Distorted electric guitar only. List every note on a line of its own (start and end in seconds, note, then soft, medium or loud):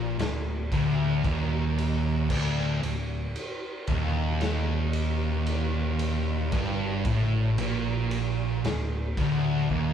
0.00 0.17 A#2 loud
0.19 0.61 D2 medium
0.72 1.23 D2 loud
1.24 2.28 D#2 loud
2.29 2.81 D2 loud
2.82 3.25 D2 medium
3.88 6.51 D#2 loud
6.52 7.04 G2 loud
7.06 7.57 A2 loud
7.58 8.63 A#2 loud
8.64 9.07 D2 medium
9.18 9.69 D2 loud
9.70 9.93 D#2 loud